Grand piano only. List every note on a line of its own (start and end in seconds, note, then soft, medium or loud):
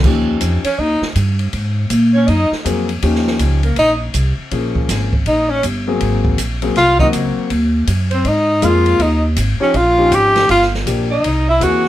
0.05 0.61 F3 medium
0.05 0.61 C#4 medium
0.05 0.61 D#4 medium
0.05 0.61 G4 medium
2.65 2.86 F#3 medium
2.65 2.86 A#3 medium
2.65 2.86 C4 medium
2.65 2.86 G#4 medium
3.03 3.59 F3 medium
3.03 3.59 C#4 medium
3.03 3.59 D#4 medium
3.03 3.59 G4 medium
4.51 5.08 F3 medium
4.51 5.08 A#3 soft
4.51 5.08 C#4 soft
4.51 5.08 G#4 medium
5.88 6.36 F#3 medium
5.88 6.36 A#3 medium
5.88 6.36 C4 medium
5.88 6.36 G#4 medium
6.62 6.74 F#3 medium
6.62 6.74 A#3 medium
6.62 6.74 C4 medium
6.62 6.75 G#4 medium
6.99 7.47 F#3 medium
6.99 7.48 A#3 medium
6.99 7.48 C4 medium
6.99 7.48 F#4 medium
8.62 8.99 G#3 medium
8.62 8.99 A#3 medium
8.62 8.99 C4 medium
8.62 9.00 G#4 medium
9.60 9.72 F3 medium
9.60 9.72 C#4 medium
9.60 9.73 D#4 medium
9.60 9.73 G4 medium
9.98 10.46 F3 medium
9.98 10.46 C#4 medium
9.98 10.46 D#4 medium
9.98 10.47 G4 medium
10.85 11.07 F3 medium
10.85 11.07 A#3 soft
10.85 11.08 D4 soft
10.85 11.08 G4 medium
11.60 11.82 E3 medium
11.60 11.82 A#3 soft
11.60 11.82 C4 soft
11.60 11.82 G#4 medium